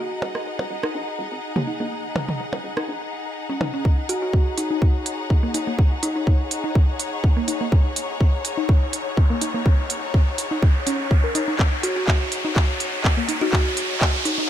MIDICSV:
0, 0, Header, 1, 8, 480
1, 0, Start_track
1, 0, Key_signature, -6, "minor"
1, 0, Tempo, 483871
1, 1900, Time_signature, 4, 2, 24, 8
1, 14381, End_track
2, 0, Start_track
2, 0, Title_t, "String section"
2, 0, Program_c, 0, 48
2, 0, Note_on_c, 0, 63, 76
2, 0, Note_on_c, 0, 68, 65
2, 0, Note_on_c, 0, 75, 69
2, 0, Note_on_c, 0, 78, 72
2, 4146, Note_on_c, 0, 73, 85
2, 4832, Note_off_c, 0, 75, 0
2, 14381, Note_off_c, 0, 63, 0
2, 14381, Note_off_c, 0, 68, 0
2, 14381, Note_off_c, 0, 73, 0
2, 14381, Note_off_c, 0, 78, 0
2, 14381, End_track
3, 0, Start_track
3, 0, Title_t, "Kalimba"
3, 0, Program_c, 1, 108
3, 4059, Note_on_c, 1, 66, 88
3, 4141, Note_off_c, 1, 66, 0
3, 4188, Note_on_c, 1, 66, 74
3, 4259, Note_off_c, 1, 66, 0
3, 4539, Note_on_c, 1, 63, 85
3, 4750, Note_off_c, 1, 63, 0
3, 5980, Note_on_c, 1, 63, 89
3, 6062, Note_off_c, 1, 63, 0
3, 6108, Note_on_c, 1, 63, 70
3, 6179, Note_off_c, 1, 63, 0
3, 11739, Note_on_c, 1, 66, 92
3, 11822, Note_off_c, 1, 66, 0
3, 11867, Note_on_c, 1, 66, 72
3, 11939, Note_off_c, 1, 66, 0
3, 13307, Note_on_c, 1, 66, 89
3, 13379, Note_off_c, 1, 66, 0
3, 13419, Note_on_c, 1, 66, 78
3, 13501, Note_off_c, 1, 66, 0
3, 14139, Note_on_c, 1, 63, 86
3, 14222, Note_off_c, 1, 63, 0
3, 14267, Note_on_c, 1, 63, 79
3, 14339, Note_off_c, 1, 63, 0
3, 14381, End_track
4, 0, Start_track
4, 0, Title_t, "Synth arpeggio sound"
4, 0, Program_c, 2, 84
4, 828, Note_on_c, 2, 63, 73
4, 888, Note_off_c, 2, 63, 0
4, 1548, Note_on_c, 2, 58, 97
4, 1588, Note_off_c, 2, 58, 0
4, 1660, Note_on_c, 2, 63, 75
4, 1687, Note_off_c, 2, 63, 0
4, 1788, Note_on_c, 2, 58, 73
4, 1812, Note_off_c, 2, 58, 0
4, 2748, Note_on_c, 2, 63, 76
4, 2808, Note_off_c, 2, 63, 0
4, 3467, Note_on_c, 2, 61, 70
4, 3492, Note_off_c, 2, 61, 0
4, 3579, Note_on_c, 2, 63, 75
4, 3625, Note_off_c, 2, 63, 0
4, 3708, Note_on_c, 2, 61, 74
4, 3748, Note_off_c, 2, 61, 0
4, 4667, Note_on_c, 2, 63, 73
4, 4728, Note_off_c, 2, 63, 0
4, 5388, Note_on_c, 2, 58, 95
4, 5428, Note_off_c, 2, 58, 0
4, 5500, Note_on_c, 2, 63, 76
4, 5527, Note_off_c, 2, 63, 0
4, 5628, Note_on_c, 2, 58, 70
4, 5652, Note_off_c, 2, 58, 0
4, 6587, Note_on_c, 2, 63, 76
4, 6647, Note_off_c, 2, 63, 0
4, 7307, Note_on_c, 2, 58, 96
4, 7348, Note_off_c, 2, 58, 0
4, 7420, Note_on_c, 2, 63, 73
4, 7447, Note_off_c, 2, 63, 0
4, 7547, Note_on_c, 2, 58, 75
4, 7572, Note_off_c, 2, 58, 0
4, 8507, Note_on_c, 2, 63, 76
4, 8567, Note_off_c, 2, 63, 0
4, 9227, Note_on_c, 2, 58, 100
4, 9268, Note_off_c, 2, 58, 0
4, 9339, Note_on_c, 2, 63, 71
4, 9367, Note_off_c, 2, 63, 0
4, 9468, Note_on_c, 2, 58, 78
4, 9492, Note_off_c, 2, 58, 0
4, 10428, Note_on_c, 2, 63, 79
4, 10488, Note_off_c, 2, 63, 0
4, 10780, Note_on_c, 2, 61, 75
4, 10825, Note_off_c, 2, 61, 0
4, 11148, Note_on_c, 2, 70, 77
4, 11172, Note_off_c, 2, 70, 0
4, 11259, Note_on_c, 2, 63, 100
4, 11305, Note_off_c, 2, 63, 0
4, 11387, Note_on_c, 2, 63, 78
4, 11448, Note_off_c, 2, 63, 0
4, 12347, Note_on_c, 2, 63, 75
4, 12408, Note_off_c, 2, 63, 0
4, 13067, Note_on_c, 2, 58, 96
4, 13107, Note_off_c, 2, 58, 0
4, 13179, Note_on_c, 2, 63, 76
4, 13207, Note_off_c, 2, 63, 0
4, 13307, Note_on_c, 2, 63, 98
4, 13332, Note_off_c, 2, 63, 0
4, 14267, Note_on_c, 2, 63, 79
4, 14328, Note_off_c, 2, 63, 0
4, 14381, End_track
5, 0, Start_track
5, 0, Title_t, "FM bass"
5, 0, Program_c, 3, 39
5, 220, Note_on_c, 3, 27, 93
5, 397, Note_off_c, 3, 27, 0
5, 587, Note_on_c, 3, 27, 95
5, 669, Note_off_c, 3, 27, 0
5, 699, Note_on_c, 3, 27, 89
5, 792, Note_off_c, 3, 27, 0
5, 939, Note_on_c, 3, 34, 91
5, 1032, Note_off_c, 3, 34, 0
5, 1179, Note_on_c, 3, 27, 101
5, 1272, Note_off_c, 3, 27, 0
5, 1307, Note_on_c, 3, 32, 83
5, 1389, Note_off_c, 3, 32, 0
5, 1547, Note_on_c, 3, 39, 102
5, 1628, Note_off_c, 3, 39, 0
5, 1788, Note_on_c, 3, 34, 90
5, 1869, Note_off_c, 3, 34, 0
5, 2140, Note_on_c, 3, 27, 92
5, 2318, Note_off_c, 3, 27, 0
5, 2508, Note_on_c, 3, 27, 93
5, 2589, Note_off_c, 3, 27, 0
5, 2620, Note_on_c, 3, 27, 90
5, 2712, Note_off_c, 3, 27, 0
5, 2859, Note_on_c, 3, 34, 86
5, 2952, Note_off_c, 3, 34, 0
5, 3468, Note_on_c, 3, 27, 83
5, 3549, Note_off_c, 3, 27, 0
5, 3579, Note_on_c, 3, 27, 87
5, 3672, Note_off_c, 3, 27, 0
5, 14381, End_track
6, 0, Start_track
6, 0, Title_t, "Riser"
6, 0, Program_c, 4, 103
6, 3820, Note_on_c, 4, 60, 76
6, 14381, Note_off_c, 4, 60, 0
6, 14381, End_track
7, 0, Start_track
7, 0, Title_t, "Percussion blips"
7, 220, Note_on_c, 9, 61, 70
7, 319, Note_off_c, 9, 61, 0
7, 588, Note_on_c, 9, 61, 62
7, 687, Note_off_c, 9, 61, 0
7, 2140, Note_on_c, 9, 61, 71
7, 2239, Note_off_c, 9, 61, 0
7, 2507, Note_on_c, 9, 61, 64
7, 2607, Note_off_c, 9, 61, 0
7, 3579, Note_on_c, 9, 61, 68
7, 3679, Note_off_c, 9, 61, 0
7, 14381, End_track
8, 0, Start_track
8, 0, Title_t, "Drums"
8, 348, Note_on_c, 9, 37, 56
8, 447, Note_off_c, 9, 37, 0
8, 828, Note_on_c, 9, 37, 64
8, 927, Note_off_c, 9, 37, 0
8, 1548, Note_on_c, 9, 47, 83
8, 1647, Note_off_c, 9, 47, 0
8, 2140, Note_on_c, 9, 47, 77
8, 2239, Note_off_c, 9, 47, 0
8, 2268, Note_on_c, 9, 47, 76
8, 2367, Note_off_c, 9, 47, 0
8, 2748, Note_on_c, 9, 37, 64
8, 2847, Note_off_c, 9, 37, 0
8, 3579, Note_on_c, 9, 47, 70
8, 3679, Note_off_c, 9, 47, 0
8, 3820, Note_on_c, 9, 36, 110
8, 3919, Note_off_c, 9, 36, 0
8, 4059, Note_on_c, 9, 46, 85
8, 4158, Note_off_c, 9, 46, 0
8, 4300, Note_on_c, 9, 36, 103
8, 4399, Note_off_c, 9, 36, 0
8, 4539, Note_on_c, 9, 46, 88
8, 4638, Note_off_c, 9, 46, 0
8, 4779, Note_on_c, 9, 36, 119
8, 4879, Note_off_c, 9, 36, 0
8, 5019, Note_on_c, 9, 46, 84
8, 5118, Note_off_c, 9, 46, 0
8, 5260, Note_on_c, 9, 36, 99
8, 5359, Note_off_c, 9, 36, 0
8, 5499, Note_on_c, 9, 46, 91
8, 5599, Note_off_c, 9, 46, 0
8, 5740, Note_on_c, 9, 36, 115
8, 5839, Note_off_c, 9, 36, 0
8, 5980, Note_on_c, 9, 46, 93
8, 6079, Note_off_c, 9, 46, 0
8, 6220, Note_on_c, 9, 36, 106
8, 6319, Note_off_c, 9, 36, 0
8, 6459, Note_on_c, 9, 46, 91
8, 6558, Note_off_c, 9, 46, 0
8, 6700, Note_on_c, 9, 36, 121
8, 6799, Note_off_c, 9, 36, 0
8, 6939, Note_on_c, 9, 46, 92
8, 7038, Note_off_c, 9, 46, 0
8, 7180, Note_on_c, 9, 36, 103
8, 7279, Note_off_c, 9, 36, 0
8, 7419, Note_on_c, 9, 46, 92
8, 7518, Note_off_c, 9, 46, 0
8, 7660, Note_on_c, 9, 36, 122
8, 7759, Note_off_c, 9, 36, 0
8, 7899, Note_on_c, 9, 46, 96
8, 7999, Note_off_c, 9, 46, 0
8, 8140, Note_on_c, 9, 36, 108
8, 8239, Note_off_c, 9, 36, 0
8, 8380, Note_on_c, 9, 46, 94
8, 8479, Note_off_c, 9, 46, 0
8, 8620, Note_on_c, 9, 36, 127
8, 8719, Note_off_c, 9, 36, 0
8, 8860, Note_on_c, 9, 46, 94
8, 8959, Note_off_c, 9, 46, 0
8, 9100, Note_on_c, 9, 36, 109
8, 9199, Note_off_c, 9, 36, 0
8, 9339, Note_on_c, 9, 46, 96
8, 9439, Note_off_c, 9, 46, 0
8, 9580, Note_on_c, 9, 36, 113
8, 9679, Note_off_c, 9, 36, 0
8, 9820, Note_on_c, 9, 46, 93
8, 9919, Note_off_c, 9, 46, 0
8, 10060, Note_on_c, 9, 36, 103
8, 10159, Note_off_c, 9, 36, 0
8, 10300, Note_on_c, 9, 46, 93
8, 10399, Note_off_c, 9, 46, 0
8, 10540, Note_on_c, 9, 36, 124
8, 10639, Note_off_c, 9, 36, 0
8, 10779, Note_on_c, 9, 46, 92
8, 10879, Note_off_c, 9, 46, 0
8, 11020, Note_on_c, 9, 36, 107
8, 11119, Note_off_c, 9, 36, 0
8, 11259, Note_on_c, 9, 46, 93
8, 11359, Note_off_c, 9, 46, 0
8, 11499, Note_on_c, 9, 39, 49
8, 11500, Note_on_c, 9, 36, 112
8, 11599, Note_off_c, 9, 36, 0
8, 11599, Note_off_c, 9, 39, 0
8, 11740, Note_on_c, 9, 46, 90
8, 11839, Note_off_c, 9, 46, 0
8, 11979, Note_on_c, 9, 39, 51
8, 11980, Note_on_c, 9, 36, 107
8, 12079, Note_off_c, 9, 36, 0
8, 12079, Note_off_c, 9, 39, 0
8, 12220, Note_on_c, 9, 46, 88
8, 12319, Note_off_c, 9, 46, 0
8, 12460, Note_on_c, 9, 36, 122
8, 12460, Note_on_c, 9, 39, 52
8, 12559, Note_off_c, 9, 36, 0
8, 12559, Note_off_c, 9, 39, 0
8, 12700, Note_on_c, 9, 46, 91
8, 12799, Note_off_c, 9, 46, 0
8, 12939, Note_on_c, 9, 39, 57
8, 12940, Note_on_c, 9, 36, 107
8, 13039, Note_off_c, 9, 36, 0
8, 13039, Note_off_c, 9, 39, 0
8, 13179, Note_on_c, 9, 46, 92
8, 13279, Note_off_c, 9, 46, 0
8, 13419, Note_on_c, 9, 36, 110
8, 13420, Note_on_c, 9, 39, 59
8, 13519, Note_off_c, 9, 36, 0
8, 13519, Note_off_c, 9, 39, 0
8, 13659, Note_on_c, 9, 46, 91
8, 13758, Note_off_c, 9, 46, 0
8, 13899, Note_on_c, 9, 39, 64
8, 13900, Note_on_c, 9, 36, 99
8, 13998, Note_off_c, 9, 39, 0
8, 13999, Note_off_c, 9, 36, 0
8, 14139, Note_on_c, 9, 46, 83
8, 14238, Note_off_c, 9, 46, 0
8, 14381, End_track
0, 0, End_of_file